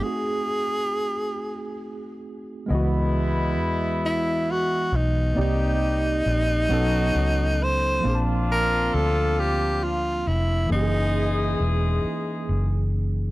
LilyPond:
<<
  \new Staff \with { instrumentName = "Tenor saxophone" } { \time 6/8 \key gis \minor \tempo 4. = 45 gis'2~ gis'8 r8 | r4. e'8 fis'8 dis'8 | ees'2~ ees'8 bis'8 | r8 ais'8 a'8 g'8 eis'8 e'8 |
dis'4 r2 | }
  \new Staff \with { instrumentName = "Horn section" } { \time 6/8 \key gis \minor r2. | <gis b e'>2~ <gis b e'>8 r8 | <c' ees' g'>4 r8 <cis' dis' fis'>4 r8 | <bis d' eis'>2~ <bis d' eis'>8 r8 |
<e gis gis'>2~ <e gis gis'>8 r8 | }
  \new Staff \with { instrumentName = "Tine electric piano" } { \time 6/8 \key gis \minor <a bis dis' fis' gis'>2. | <e gis b fis' dis''>2. | <bes c' ees' g' d''>4. <fis b cis' dis' a'>4. | <eis ais bis d' gis' a''>2. |
<e ais cis' dis' g' gis'>2. | }
  \new Staff \with { instrumentName = "Fingered electric bass" } { \clef bass \time 6/8 \key gis \minor r2. | cis,4 e,4. b,,8 | c,4 bes,,8 b,,8 cis,4 | ais,,4 d,4. eis,,8 |
fis,,4 e,,8 r8 fis,,4 | }
>>